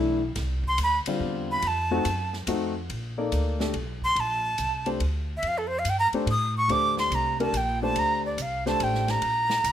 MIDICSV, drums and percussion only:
0, 0, Header, 1, 2, 480
1, 0, Start_track
1, 0, Key_signature, -2, "major"
1, 0, Tempo, 421941
1, 407, Time_signature, 3, 2, 24, 8
1, 11057, End_track
2, 0, Start_track
2, 0, Title_t, "Drums"
2, 404, Note_on_c, 9, 51, 62
2, 405, Note_on_c, 9, 38, 35
2, 518, Note_off_c, 9, 51, 0
2, 519, Note_off_c, 9, 38, 0
2, 724, Note_on_c, 9, 36, 55
2, 838, Note_off_c, 9, 36, 0
2, 886, Note_on_c, 9, 44, 52
2, 886, Note_on_c, 9, 51, 69
2, 1000, Note_off_c, 9, 44, 0
2, 1000, Note_off_c, 9, 51, 0
2, 1204, Note_on_c, 9, 51, 68
2, 1318, Note_off_c, 9, 51, 0
2, 1846, Note_on_c, 9, 51, 63
2, 1960, Note_off_c, 9, 51, 0
2, 2330, Note_on_c, 9, 44, 44
2, 2330, Note_on_c, 9, 51, 64
2, 2444, Note_off_c, 9, 44, 0
2, 2444, Note_off_c, 9, 51, 0
2, 2654, Note_on_c, 9, 38, 37
2, 2767, Note_off_c, 9, 38, 0
2, 2810, Note_on_c, 9, 44, 55
2, 2810, Note_on_c, 9, 51, 67
2, 2924, Note_off_c, 9, 44, 0
2, 2924, Note_off_c, 9, 51, 0
2, 3296, Note_on_c, 9, 51, 55
2, 3410, Note_off_c, 9, 51, 0
2, 3776, Note_on_c, 9, 44, 47
2, 3776, Note_on_c, 9, 51, 60
2, 3890, Note_off_c, 9, 44, 0
2, 3890, Note_off_c, 9, 51, 0
2, 4095, Note_on_c, 9, 38, 53
2, 4209, Note_off_c, 9, 38, 0
2, 4250, Note_on_c, 9, 51, 53
2, 4364, Note_off_c, 9, 51, 0
2, 4571, Note_on_c, 9, 36, 47
2, 4685, Note_off_c, 9, 36, 0
2, 4735, Note_on_c, 9, 51, 53
2, 4849, Note_off_c, 9, 51, 0
2, 5209, Note_on_c, 9, 44, 50
2, 5209, Note_on_c, 9, 51, 58
2, 5322, Note_off_c, 9, 44, 0
2, 5322, Note_off_c, 9, 51, 0
2, 5527, Note_on_c, 9, 51, 43
2, 5641, Note_off_c, 9, 51, 0
2, 5691, Note_on_c, 9, 51, 59
2, 5805, Note_off_c, 9, 51, 0
2, 6172, Note_on_c, 9, 51, 54
2, 6286, Note_off_c, 9, 51, 0
2, 6653, Note_on_c, 9, 44, 54
2, 6653, Note_on_c, 9, 51, 64
2, 6767, Note_off_c, 9, 44, 0
2, 6767, Note_off_c, 9, 51, 0
2, 6971, Note_on_c, 9, 51, 43
2, 7085, Note_off_c, 9, 51, 0
2, 7134, Note_on_c, 9, 51, 56
2, 7248, Note_off_c, 9, 51, 0
2, 7614, Note_on_c, 9, 51, 56
2, 7727, Note_off_c, 9, 51, 0
2, 7934, Note_on_c, 9, 38, 49
2, 8048, Note_off_c, 9, 38, 0
2, 8095, Note_on_c, 9, 44, 46
2, 8095, Note_on_c, 9, 51, 56
2, 8209, Note_off_c, 9, 44, 0
2, 8209, Note_off_c, 9, 51, 0
2, 8419, Note_on_c, 9, 51, 43
2, 8533, Note_off_c, 9, 51, 0
2, 8574, Note_on_c, 9, 44, 49
2, 8574, Note_on_c, 9, 51, 67
2, 8688, Note_off_c, 9, 44, 0
2, 8688, Note_off_c, 9, 51, 0
2, 9051, Note_on_c, 9, 51, 58
2, 9165, Note_off_c, 9, 51, 0
2, 9532, Note_on_c, 9, 44, 60
2, 9532, Note_on_c, 9, 51, 61
2, 9646, Note_off_c, 9, 44, 0
2, 9646, Note_off_c, 9, 51, 0
2, 9852, Note_on_c, 9, 38, 47
2, 9966, Note_off_c, 9, 38, 0
2, 10012, Note_on_c, 9, 51, 60
2, 10125, Note_off_c, 9, 51, 0
2, 10175, Note_on_c, 9, 38, 30
2, 10288, Note_off_c, 9, 38, 0
2, 10330, Note_on_c, 9, 38, 43
2, 10331, Note_on_c, 9, 51, 43
2, 10444, Note_off_c, 9, 38, 0
2, 10445, Note_off_c, 9, 51, 0
2, 10486, Note_on_c, 9, 51, 60
2, 10600, Note_off_c, 9, 51, 0
2, 10803, Note_on_c, 9, 38, 62
2, 10917, Note_off_c, 9, 38, 0
2, 10971, Note_on_c, 9, 44, 58
2, 10971, Note_on_c, 9, 51, 63
2, 11057, Note_off_c, 9, 44, 0
2, 11057, Note_off_c, 9, 51, 0
2, 11057, End_track
0, 0, End_of_file